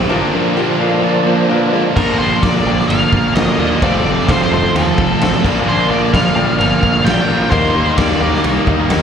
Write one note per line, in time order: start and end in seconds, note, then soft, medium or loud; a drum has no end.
0.00 0.10 G3 loud
0.00 0.10 C4 loud
0.00 0.11 G4 loud
0.00 0.32 G4 loud
0.09 1.25 A#2 medium
0.09 0.32 A#2 loud
0.09 1.25 D3 medium
0.09 0.32 D3 loud
0.09 1.92 F3 medium
0.09 1.26 F3 loud
0.09 0.33 A#3 loud
0.09 1.92 A#3 soft
0.09 1.26 A#3 loud
0.09 0.29 D4 loud
0.09 0.33 D4 loud
0.09 1.93 D4 medium
0.09 1.25 D4 loud
0.09 0.29 F4 loud
0.09 0.34 F4 loud
0.09 0.29 A#4 loud
0.33 0.54 A#2 medium
0.33 0.55 D3 loud
0.33 0.55 F3 medium
0.33 0.56 A#3 medium
0.33 0.52 D4 medium
0.33 0.56 D4 loud
0.33 0.53 F4 medium
0.33 0.57 F4 loud
0.33 0.53 A#4 loud
0.55 0.78 A#2 medium
0.55 0.78 D3 loud
0.55 0.79 F3 loud
0.55 0.79 A#3 loud
0.55 0.76 D4 loud
0.55 0.80 D4 medium
0.55 0.76 F4 loud
0.55 0.80 F4 medium
0.55 0.76 G4 loud
0.79 1.01 A#2 medium
0.79 1.01 D3 loud
0.79 1.01 F3 medium
0.79 1.02 A#3 medium
0.79 0.98 D4 medium
0.79 1.02 D4 loud
0.79 0.99 F4 medium
0.79 1.03 F4 loud
0.79 0.98 A4 loud
0.79 1.04 F5 loud
1.02 1.23 A#2 loud
1.02 1.24 D3 loud
1.02 1.26 F3 loud
1.02 1.25 A#3 medium
1.02 1.22 D4 medium
1.02 1.25 D4 loud
1.02 1.22 F4 medium
1.02 1.25 F4 loud
1.02 1.22 A#4 medium
1.02 1.26 D5 medium
1.24 1.47 A#2 medium
1.24 1.47 D3 loud
1.24 1.48 A#3 loud
1.24 1.49 A#3 medium
1.24 1.45 D4 medium
1.24 1.48 D4 loud
1.24 1.48 D4 medium
1.24 1.45 F4 medium
1.24 1.49 F4 loud
1.24 1.45 A#4 medium
1.24 1.49 C5 medium
1.28 1.48 A#2 medium
1.28 1.49 D3 medium
1.28 1.49 F3 medium
1.48 1.71 A#2 medium
1.48 1.95 A#2 loud
1.48 1.71 D3 loud
1.48 1.95 D3 medium
1.48 1.96 F3 medium
1.48 1.72 A#3 loud
1.48 1.68 D4 loud
1.48 1.72 D4 loud
1.48 1.68 F4 loud
1.48 1.73 F4 loud
1.48 1.68 A#4 loud
1.48 1.73 B4 loud
1.53 1.96 A#3 loud
1.53 1.96 D4 loud
1.72 1.94 A#2 medium
1.72 1.95 D3 loud
1.72 1.95 F3 medium
1.72 1.94 G#3 medium
1.72 1.95 A#3 loud
1.72 1.92 D4 medium
1.72 1.95 D4 medium
1.72 1.95 F4 loud
1.72 1.92 F4 medium
1.72 1.95 F4 loud
1.72 1.92 A#4 medium
1.95 2.11 A#1 medium
1.95 3.56 A#2 medium
1.95 2.18 A#2 loud
1.95 3.57 D3 medium
1.95 2.20 F3 loud
1.95 3.57 A#3 loud
1.95 2.19 A#3 loud
1.95 3.57 D4 loud
1.95 2.20 D4 loud
1.95 3.79 F4 medium
1.95 2.15 F4 loud
1.95 3.57 F4 medium
1.95 3.79 A#4 medium
1.95 2.15 A#4 medium
1.95 2.19 A#4 medium
1.95 2.15 D5 medium
1.95 3.79 D5 medium
1.95 2.15 F5 loud
1.95 3.79 F5 medium
1.95 kick loud
1.95 crash loud
2.19 2.34 A#1 medium
2.19 2.41 A#2 medium
2.19 2.42 F3 medium
2.19 2.43 A#3 medium
2.19 2.43 D4 medium
2.19 2.38 F4 medium
2.19 2.38 A#4 medium
2.19 2.43 C5 medium
2.19 2.38 D5 medium
2.19 2.38 G5 medium
2.42 2.57 A#1 medium
2.42 2.64 A#2 loud
2.42 2.66 F3 loud
2.42 2.66 A#3 loud
2.42 2.66 D4 loud
2.42 2.61 F4 medium
2.42 2.61 A#4 medium
2.42 2.87 D5 medium
2.42 2.61 D5 medium
2.42 2.61 F5 medium
2.42 kick loud
2.42 snare loud
2.42 ride bell medium
2.65 2.81 A#1 medium
2.65 2.87 A#2 medium
2.65 2.88 F3 medium
2.65 2.88 A#3 medium
2.65 2.89 D4 loud
2.65 2.85 F4 medium
2.65 2.85 A#4 medium
2.65 2.85 D5 medium
2.65 2.85 G5 loud
2.80 snare soft
2.88 3.04 G1 medium
2.88 3.11 A#2 loud
2.88 3.12 F3 loud
2.88 3.12 A#3 loud
2.88 3.12 D4 loud
2.88 3.08 F4 medium
2.88 3.08 A#4 medium
2.88 3.08 D5 medium
2.88 3.35 F5 loud
2.88 3.08 F5 medium
2.88 ride bell medium
3.12 3.27 A#1 medium
3.12 3.34 A#2 medium
3.12 3.35 F3 medium
3.12 3.35 A#3 medium
3.12 3.36 D4 loud
3.12 3.31 F4 medium
3.12 3.31 A#4 medium
3.12 3.31 D5 medium
3.12 3.31 F5 medium
3.12 kick medium
3.34 3.49 A#1 medium
3.34 3.57 A#2 loud
3.34 3.59 F3 loud
3.34 3.58 A#3 loud
3.34 3.59 D4 loud
3.34 3.54 F4 medium
3.34 3.54 A#4 medium
3.34 3.54 D5 medium
3.34 3.59 D#5 loud
3.34 3.54 G5 medium
3.34 snare loud
3.34 ride bell medium
3.57 3.73 D#2 loud
3.57 3.80 A#2 medium
3.57 3.81 A#2 medium
3.57 3.81 D3 medium
3.57 3.82 F3 medium
3.57 3.80 A#3 medium
3.57 3.81 A#3 medium
3.57 3.80 D4 medium
3.57 3.81 D4 medium
3.57 3.84 F4 loud
3.57 3.77 F4 medium
3.57 3.77 A#4 medium
3.57 3.77 D5 medium
3.57 3.82 D#5 medium
3.57 3.77 F5 medium
3.81 3.96 F1 medium
3.81 5.41 F2 loud
3.81 4.03 F2 medium
3.81 5.42 C3 loud
3.81 4.04 C3 loud
3.81 5.43 F3 loud
3.81 4.05 F3 loud
3.81 4.05 A3 loud
3.81 5.43 A3 loud
3.81 4.06 C4 loud
3.81 5.43 C4 loud
3.81 5.42 F4 medium
3.81 4.00 F4 loud
3.81 5.46 F4 loud
3.81 5.41 A4 medium
3.81 4.00 A4 medium
3.81 5.41 C5 medium
3.81 4.00 C5 medium
3.81 4.30 D5 loud
3.81 5.41 F5 medium
3.81 4.00 F5 loud
3.81 kick loud
3.81 ride bell medium
4.05 4.19 F1 medium
4.05 4.26 F2 medium
4.05 4.27 C3 medium
4.05 4.28 F3 medium
4.05 4.28 A3 medium
4.05 4.28 C4 medium
4.05 4.23 F4 medium
4.05 4.23 A4 medium
4.05 4.23 C5 medium
4.05 4.23 F5 medium
4.27 4.42 F1 medium
4.27 4.50 F2 loud
4.27 4.51 C3 loud
4.27 4.52 F3 loud
4.27 4.52 A3 loud
4.27 4.52 C4 loud
4.27 4.46 F4 medium
4.27 4.46 A4 medium
4.27 4.46 C5 medium
4.27 4.40 C5 medium
4.27 4.46 F5 medium
4.27 kick loud
4.27 snare loud
4.27 ride bell medium
4.43 4.52 C5 medium
4.51 4.66 F1 medium
4.51 4.74 F2 medium
4.51 4.74 C3 medium
4.51 4.76 F3 medium
4.51 4.75 A3 medium
4.51 4.76 C4 medium
4.51 4.69 F4 loud
4.51 4.70 A4 medium
4.51 4.70 C5 medium
4.51 4.76 C5 medium
4.51 4.70 D#5 loud
4.74 4.89 D#2 medium
4.74 4.97 F2 medium
4.74 4.97 C3 loud
4.74 4.99 F3 loud
4.74 4.99 A3 loud
4.74 4.99 C4 loud
4.74 4.93 F4 medium
4.74 4.93 A4 medium
4.74 5.41 A4 medium
4.74 4.92 C5 medium
4.74 4.93 F5 medium
4.74 ride bell medium
4.97 5.12 F1 medium
4.97 5.20 F2 medium
4.97 5.20 C3 medium
4.97 5.22 F3 medium
4.97 5.21 A3 medium
4.97 5.22 C4 medium
4.97 5.16 F4 medium
4.97 5.16 A4 medium
4.97 5.16 C5 medium
4.97 5.16 F5 medium
4.97 kick medium
5.20 5.35 A1 medium
5.20 5.42 F2 loud
5.20 5.42 C3 loud
5.20 5.44 F3 loud
5.20 5.43 A3 loud
5.20 5.43 C4 loud
5.20 5.39 F4 medium
5.20 5.39 A4 medium
5.20 5.39 C5 medium
5.20 5.39 F5 medium
5.20 snare loud
5.20 ride bell medium
5.42 5.59 A#1 loud
5.42 7.03 A#2 loud
5.42 5.65 A#2 medium
5.42 7.04 D3 loud
5.42 5.67 F3 loud
5.42 7.06 A#3 loud
5.42 5.67 A#3 loud
5.42 7.05 D4 loud
5.42 5.67 D4 loud
5.42 5.80 F4 medium
5.42 7.50 F4 medium
5.42 7.08 F4 loud
5.42 5.81 A#4 medium
5.42 7.50 A#4 medium
5.42 5.80 D5 medium
5.42 7.50 D5 medium
5.42 5.81 F5 medium
5.42 7.50 F5 medium
5.42 kick loud
5.42 crash loud
5.66 5.81 A#1 medium
5.66 5.89 A#2 medium
5.66 5.91 F3 loud
5.66 5.91 A#3 loud
5.66 5.91 D4 loud
5.66 5.91 C5 medium
5.89 6.04 A#1 medium
5.89 6.13 A#2 medium
5.89 6.14 F3 medium
5.89 6.15 A#3 loud
5.89 6.15 D4 medium
5.89 6.08 F4 medium
5.89 6.08 A#4 medium
5.89 6.08 D5 medium
5.89 6.13 D5 medium
5.89 6.08 F5 medium
6.13 6.28 A#1 loud
6.13 6.35 A#2 loud
6.13 6.37 F3 loud
6.13 6.37 A#3 loud
6.13 6.37 D4 loud
6.13 6.31 F4 medium
6.13 6.31 A#4 medium
6.13 6.31 D5 medium
6.13 6.31 F5 medium
6.13 6.56 F5 medium
6.13 kick medium
6.13 snare loud
6.13 ride bell medium
6.36 6.50 A#1 medium
6.36 6.59 A#2 medium
6.36 6.61 F3 medium
6.36 6.61 A#3 loud
6.36 6.61 D4 medium
6.36 6.54 F4 loud
6.36 6.54 A#4 medium
6.36 6.54 D5 loud
6.36 6.54 G5 loud
6.58 6.74 G1 loud
6.58 6.82 A#2 loud
6.58 6.83 F3 loud
6.58 6.84 A#3 loud
6.58 6.83 D4 loud
6.58 6.77 F4 medium
6.58 6.77 A#4 medium
6.58 6.77 D5 medium
6.58 6.80 F5 loud
6.58 6.77 F5 medium
6.58 ride bell medium
6.81 6.97 A#1 loud
6.81 7.05 A#2 medium
6.81 7.06 F3 medium
6.81 7.07 A#3 loud
6.81 7.06 D4 loud
6.81 7.00 F4 medium
6.81 7.00 A#4 medium
6.81 7.01 D5 medium
6.81 7.05 F5 loud
6.81 7.00 F5 medium
6.81 kick medium
7.04 7.20 A#1 medium
7.04 7.26 A#2 medium
7.04 7.27 A#2 loud
7.04 7.27 D3 medium
7.04 7.29 F3 loud
7.04 7.52 A#3 medium
7.04 7.30 A#3 loud
7.04 7.28 D4 medium
7.04 7.29 D4 loud
7.04 7.23 F4 medium
7.04 7.23 A#4 medium
7.04 7.23 D5 medium
7.04 7.23 F5 medium
7.04 7.48 G5 loud
7.04 snare loud
7.04 ride bell medium
7.09 7.53 F4 medium
7.28 7.44 A#1 medium
7.28 7.50 A#2 medium
7.28 7.52 F3 medium
7.28 7.53 A#3 medium
7.28 7.51 D4 medium
7.28 7.46 F4 medium
7.28 7.46 A#4 medium
7.28 7.47 D5 medium
7.28 7.46 F5 loud
7.50 7.66 D#2 medium
7.50 9.02 D#3 loud
7.50 7.74 D#3 loud
7.50 7.74 G3 medium
7.50 9.02 A#3 loud
7.50 7.76 A#3 loud
7.50 9.02 D#4 medium
7.50 9.02 D#4 loud
7.50 7.76 D#4 loud
7.50 7.70 G4 loud
7.50 9.02 G4 medium
7.50 7.70 A#4 loud
7.50 9.02 A#4 medium
7.50 7.93 C5 medium
7.50 7.69 D#5 loud
7.50 7.70 F5 loud
7.50 9.02 F5 medium
7.50 kick loud
7.50 ride bell medium
7.54 9.02 G4 loud
7.74 7.90 D#2 medium
7.74 7.96 D#3 medium
7.74 7.97 G3 medium
7.74 7.98 A#3 medium
7.74 7.98 D#4 medium
7.74 7.93 G4 medium
7.74 7.93 A#4 medium
7.74 7.93 D#5 medium
7.74 7.93 F5 medium
7.96 8.12 D#2 medium
7.96 8.20 D#3 loud
7.96 8.21 G3 loud
7.96 8.22 A#3 loud
7.96 8.22 D#4 loud
7.96 8.16 G4 medium
7.96 8.16 A#4 medium
7.96 8.40 D5 medium
7.96 8.16 D#5 medium
7.96 8.16 F5 medium
7.96 kick loud
7.96 snare loud
7.96 ride bell medium
8.20 8.35 D#2 medium
8.20 8.43 D#3 medium
8.20 8.44 G3 medium
8.20 8.44 A#3 medium
8.20 8.45 D#4 medium
8.20 8.39 G4 loud
8.20 8.39 A#4 medium
8.20 8.39 D#5 medium
8.20 8.39 F5 loud
8.35 snare soft
8.44 8.59 C2 medium
8.44 8.65 D#3 loud
8.44 8.66 G3 medium
8.44 8.67 A#3 loud
8.44 8.67 D#4 loud
8.44 8.62 G4 medium
8.44 8.62 A#4 medium
8.44 8.62 D#5 medium
8.44 8.62 F5 medium
8.44 ride bell medium
8.66 8.81 D#2 medium
8.66 8.88 D#3 medium
8.66 8.89 G3 medium
8.66 8.90 A#3 medium
8.66 8.90 D#4 medium
8.66 8.85 G4 medium
8.66 8.85 A#4 medium
8.66 8.85 D#5 medium
8.66 8.85 F5 loud
8.66 kick medium
8.89 9.02 D#2 medium
8.89 9.02 D#3 loud
8.89 9.02 G3 loud
8.89 9.02 A#3 loud
8.89 9.02 D#4 loud
8.89 9.02 G4 medium
8.89 9.02 A#4 medium
8.89 9.02 D#5 medium
8.89 9.02 F5 loud
8.89 snare loud
8.89 ride bell medium